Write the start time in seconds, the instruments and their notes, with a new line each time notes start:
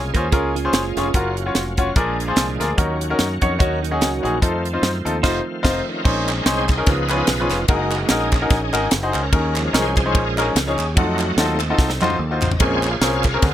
Already playing: fingered electric bass C2, grand piano C#3, tonewheel organ G#3 A#3 C#4 F4 G#4
0.14 fingered electric bass D#2, grand piano C#4 F4 G#4 C5, clean electric guitar A#4, kick, closed hi-hat
0.32 fingered electric bass C#2, grand piano C#4 F4 G#4 A#4, clean electric guitar F4 G#4, kick, closed hi-hat
0.55 clean electric guitar C#4 F4, closed hi-hat
0.65 grand piano C#4 F4 G#4 C5
0.73 fingered electric bass F#1, snare, closed hi-hat
0.97 fingered electric bass F1, grand piano C#4 F4 G#4 C#5, snare, closed hi-hat
1.14 fingered electric bass F#1, tonewheel organ F#3 F#4, grand piano C#4 F4 F#4 A#4, kick, closed hi-hat
1.37 closed hi-hat
1.46 grand piano C#4 F4 F#4 C#5
1.55 fingered electric bass F1, snare, closed hi-hat
1.77 grand piano C#4 F4 F#4 C#5, kick, closed hi-hat
1.96 fingered electric bass A#1, grand piano A#2 D4 F4 G#4 A#4, tonewheel organ F3 G#3 A#3 D4 G#4, kick, closed hi-hat
2.20 closed hi-hat
2.28 grand piano D4 F4 G#4 C5
2.36 fingered electric bass C2, snare, closed hi-hat
2.60 fingered electric bass D2, grand piano D4 F4 G#4 A#4, snare, closed hi-hat
2.77 fingered electric bass D#2, grand piano D#3 C#4 D#4 F#4 A#4, tonewheel organ D#3 F#3 C#4 F#4, kick, closed hi-hat
3.01 closed hi-hat
3.10 grand piano C#4 D#4 F#4 A#4
3.19 fingered electric bass F#2, snare, closed hi-hat
3.41 fingered electric bass F2, grand piano C#4 D#4 F#4 C#5, clean electric guitar A#4 C#5, kick, closed hi-hat
3.59 fingered electric bass D#2, grand piano C#4 D#4 F#4 C#5, clean electric guitar F#4 A#4, kick, closed hi-hat
3.83 clean electric guitar D#4 F#4, closed hi-hat
3.91 grand piano C#4 D#4 F#4 G#4
4.01 fingered electric bass C#2, snare, closed hi-hat
4.23 fingered electric bass A#1, grand piano C#4 D#4 F#4 G#4, closed hi-hat
4.41 fingered electric bass F2, tonewheel organ F3 A3 C4 F4, grand piano C4 D#4 F4 A4, kick, closed hi-hat
4.65 closed hi-hat
4.73 grand piano C4 D#4 F4 C5
4.82 fingered electric bass F#2, snare, closed hi-hat
5.05 fingered electric bass D#2, grand piano C4 D#4 F4 A4, closed hi-hat
5.23 fingered electric bass F1, grand piano C4 D#4 F4 C5, clean electric guitar A4 C5, kick, snare, crash
5.63 fingered electric bass F1, grand piano C4 D#4 F4 C5, kick, snare, crash
5.88 tonewheel organ C#4 D#4 A#4
6.04 fingered electric bass A#1, grand piano A#2 C#4 D#4 G#4 C5, tonewheel organ G#3 C4 C#4 D#4, kick, crash
6.28 clap, ride bell
6.46 fingered electric bass C2, grand piano C#4 D#4 G#4 C5, tonewheel organ D#4 G#4 C5, snare, ride bell
6.69 kick, clap, ride bell
6.78 grand piano C#4 D#4 G#4 A#4
6.86 fingered electric bass C#2, grand piano C#3, tonewheel organ F3 B3 D#4 F4 G#4 B4, kick, snare, ride bell
7.09 grand piano C#4 F4 G#4 B4, clap, ride bell
7.27 fingered electric bass B1, snare, ride bell
7.40 grand piano C#4 F4 G#4 B4
7.51 fingered electric bass F1, tonewheel organ G#4, snare, clap, ride bell
7.68 fingered electric bass F#1, tonewheel organ G#3 A#3 D#4 F#4, grand piano D#4 F#4 G#4 A#4, kick, ride bell
7.91 clap, ride bell
8.09 fingered electric bass A#1, tonewheel organ C#4 D#4 G#4, grand piano D#4 F#4 G#4 A#4, snare, ride bell
8.32 kick, clap, ride bell
8.42 grand piano D#4 F#4 G#4 A#4
8.50 fingered electric bass A#1, kick, snare, ride bell
8.73 fingered electric bass G#1, grand piano D#4 F#4 G#4 A#4, clap, ride bell
8.91 fingered electric bass F#1, snare, ride bell
9.03 grand piano D#4 F#4 G#4 C5
9.12 fingered electric bass C#2, tonewheel organ C#4 A#4, clap, ride bell
9.33 fingered electric bass D#2, grand piano D#3 C#4 D#4 G#4 A#4, kick, ride bell
9.56 tonewheel organ F3 G#3 C#4, clap, ride bell
9.73 fingered electric bass C2, grand piano C#4 D#4 G#4 A#4, tonewheel organ G#4 C5, snare, ride bell
9.97 kick, clap, ride bell
10.05 grand piano C#4 D#4 G#4 C5
10.13 fingered electric bass A#1, tonewheel organ C#4 A#4, kick, ride bell
10.38 grand piano C#4 D#4 G#4 A#4, clap, ride bell
10.55 fingered electric bass C#2, tonewheel organ F3 G#3 C#4, snare, ride bell
10.68 grand piano C#4 D#4 G#4 C#5
10.77 fingered electric bass D#2, tonewheel organ G#4, clap, ride bell
10.94 fingered electric bass F2, tonewheel organ F#3 A3 D#4 F#4, grand piano D#4 F4 F#4 A4, kick, ride bell
11.19 clap, ride bell
11.35 fingered electric bass D#2, tonewheel organ C4 D#4 A4, grand piano D#4 F4 F#4, snare, ride bell
11.39 grand piano A4
11.60 clap, ride bell
11.70 grand piano D#4 F4 F#4 A4
11.78 fingered electric bass C2, kick, snare
11.90 snare
12.01 fingered electric bass F2, grand piano D#4 F4 F#4 C5, clap, high tom
12.10 high tom
12.18 fingered electric bass D#2, tonewheel organ A4
12.31 grand piano D#4 F4 F#4 C5
12.41 fingered electric bass A1, tonewheel organ C5, clap, floor tom
12.52 tonewheel organ D#5, floor tom
12.59 fingered electric bass A#1, grand piano A#2 C4 C#4 G#4 A#4, tonewheel organ G#3 C4 C#4 F4 G#4 C#5, kick, ride bell
12.83 clap, ride bell
12.91 tonewheel organ G#4 C#5 F5
13.01 fingered electric bass C2, grand piano C4 C#4 G#4 A#4, snare, ride bell
13.22 tonewheel organ G#4 A#4 F5, kick, clap, ride bell
13.34 grand piano C4 C#4 G#4 A#4
13.42 fingered electric bass D2, grand piano D3, tonewheel organ G#3 C4 D4, kick, snare, ride bell